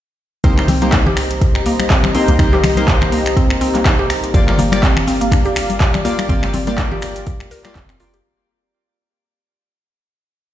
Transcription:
0.44 808-style bass C2, synth keys A#3 D#4 G4 C5, synth pluck C4, analog synth pad G4 C5 D#5 A#5, kick, closed hi-hat, mid tom
0.58 synth keys A#3 D#4 G4 C5, finger snap, clap, mid tom
0.68 synth pluck C4, open hi-hat, high conga, low conga
0.82 synth keys A#3 D#4 G4 C5, synth pluck A#3, closed hi-hat, high conga
0.92 synth pluck D#4, finger snap, kick, clap, closed hi-hat
1.07 synth pluck G4, low conga
1.17 finger snap, open hi-hat
1.31 closed hi-hat
1.41 kick, closed hi-hat
1.55 finger snap
1.66 synth pluck A#3, open hi-hat
1.79 finger snap, closed hi-hat, high conga
1.90 synth pluck C4, kick, clap, closed hi-hat
2.03 finger snap, high conga, low conga
2.15 synth keys A#3 D#4 G4 C5, synth pluck C4, open hi-hat
2.28 808-style bass C2, synth pluck A#3, closed hi-hat, high conga
2.39 808-style bass C2, synth keys A#3 D#4 G4 C5, synth pluck D#4, finger snap, kick, closed hi-hat, mid tom
2.53 synth keys A#3 D#4 G4 C5, synth pluck G4, clap, mid tom
2.63 finger snap, open hi-hat, high conga, low conga
2.77 synth keys A#3 D#4 G4 C5, closed hi-hat, high conga
2.88 kick, clap, closed hi-hat
3.01 finger snap, low conga
3.12 synth pluck A#3, open hi-hat
3.26 finger snap, closed hi-hat
3.37 synth pluck C4, kick, closed hi-hat
3.50 finger snap
3.61 synth pluck C4, open hi-hat
3.75 synth pluck A#3, clap, closed hi-hat, high conga
3.85 synth pluck D#4, finger snap, kick, clap, closed hi-hat, mid tom
3.99 synth pluck G4
4.10 finger snap, open hi-hat
4.24 closed hi-hat
4.34 808-style bass G1, synth keys A#3 F4 G4 D5, analog synth pad D5 F5, kick, closed hi-hat, mid tom, shaker
4.48 synth keys A#3 F4 G4 D5, finger snap, clap, mid tom
4.58 synth pluck A#3, open hi-hat, high conga, low conga, shaker
4.72 synth keys A#3 F4 G4 D5, finger snap, closed hi-hat, high conga, shaker
4.83 synth pluck C4, kick, clap, closed hi-hat, shaker
4.96 finger snap, low conga
5.08 synth pluck C4, open hi-hat, shaker
5.21 synth pluck A#3, closed hi-hat, shaker
5.32 synth pluck D4, finger snap, kick, closed hi-hat, shaker
5.45 synth pluck G4, shaker
5.56 finger snap, open hi-hat, shaker
5.70 closed hi-hat, high conga, shaker
5.80 kick, clap, closed hi-hat, shaker
5.94 finger snap, high conga, low conga, shaker
6.05 synth keys A#3 F4 G4 D5, synth pluck A#3, open hi-hat, shaker
6.18 finger snap, closed hi-hat, high conga, shaker
6.29 808-style bass G1, synth keys A#3 F4 G4 D5, synth pluck C4, kick, closed hi-hat, mid tom, shaker
6.43 synth keys A#3 F4 G4 D5, finger snap, clap, mid tom, shaker
6.54 synth pluck C4, open hi-hat, high conga, low conga, shaker
6.67 synth keys A#3 F4 G4 D5, synth pluck A#3, closed hi-hat, high conga, shaker
6.78 synth pluck D4, finger snap, kick, clap, closed hi-hat, shaker
6.91 synth pluck G4, low conga
7.02 finger snap, open hi-hat, shaker
7.16 closed hi-hat, shaker
7.27 kick, closed hi-hat, high conga, shaker
7.40 finger snap, shaker
7.51 synth pluck A#4, open hi-hat, shaker
7.65 synth keys A#3 F4 G4 D5, finger snap, clap, closed hi-hat, high conga, shaker
7.75 808-style bass F1, synth pluck C4, kick, clap, closed hi-hat, mid tom, shaker
7.89 synth pluck C4, finger snap, shaker
8.00 synth keys A#3 F4 G4 D5, synth pluck F4, open hi-hat, shaker
8.14 synth pluck G4, closed hi-hat, shaker

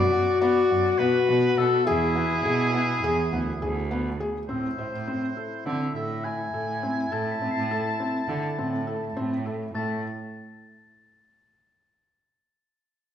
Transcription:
Already playing: cello F#2, french horn F#4, oboe D5
0.13 felt piano F#4
0.41 felt piano B3, oboe D5
0.70 cello F#2, felt piano F#4
0.98 cello B2, felt piano B3, oboe B4
1.28 cello B2, felt piano F#4
1.58 cello B2, felt piano B3, oboe A4, glockenspiel E6
1.86 cello E2, french horn E4, felt piano G#4, oboe G#4
2.16 felt piano B3
2.45 cello B2, felt piano G#4
2.74 felt piano B3
3.03 cello E2, felt piano G#4
3.32 cello D2, felt piano B3
3.62 cello D2, felt piano G#4
3.91 felt piano B3
4.20 felt piano G#4
4.48 cello A2, felt piano C4, french horn E4, oboe C5, glockenspiel E6
4.78 cello A2, felt piano C5
4.92 cello A2
5.08 felt piano C4
5.37 felt piano A4
5.66 cello D3, felt piano C4, oboe E5
5.95 cello A2, felt piano A4, oboe E5
6.24 felt piano E4, oboe G#5
6.53 cello A2, felt piano A4
6.83 felt piano C4
7.11 cello A2, felt piano A4, oboe A5, glockenspiel G#6
7.32 glockenspiel B6
7.41 cello A2, felt piano C4
7.51 cello A2, glockenspiel C7
7.71 felt piano A4
8.00 felt piano C4
8.28 cello D3, felt piano A4
8.58 cello A2, felt piano C4
8.87 felt piano A4
9.16 cello A2, felt piano C4
9.46 felt piano A4
9.74 cello A2, felt piano A3, french horn E4, oboe A5, glockenspiel A6

